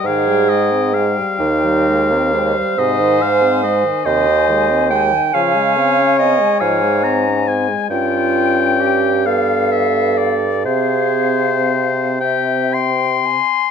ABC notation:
X:1
M:6/8
L:1/16
Q:3/8=45
K:Ablyd
V:1 name="Flute"
g8- g2 z2 | [K:Fm] a12- | a12 | g6 f6 |
f6 =e2 g2 a2 |]
V:2 name="Oboe"
f2 e2 f8 | [K:Fm] e2 f2 e2 c4 z2 | d6 f2 b2 a2 | g6 f2 =e2 =d2 |
c6 g2 c'4 |]
V:3 name="Clarinet"
A4 z2 E4 c2- | [K:Fm] c6 e4 g2 | f4 e2 d4 z2 | F4 G2 =A6 |
A6 z6 |]
V:4 name="French horn" clef=bass
E, G, A, C A, G, E, G, A, C A, G, | [K:Fm] C, E, A, C A, E, C, E, A, C A, E, | F, A, C D C A, F, A, C D C A, | D6 =B,6 |
C6 C4- C z |]
V:5 name="Bassoon" clef=bass
A,,6 E,,6 | [K:Fm] A,,6 E,,6 | D,6 A,,6 | G,,12 |
C,8- C,2 z2 |]